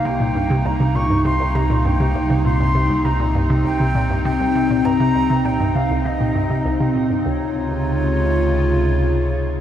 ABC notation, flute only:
X:1
M:4/4
L:1/8
Q:1/4=100
K:Cphr
V:1 name="Flute"
g2 b d' c' b g2 | c'2 b z g2 g2 | b2 g f e3 z | d8 |]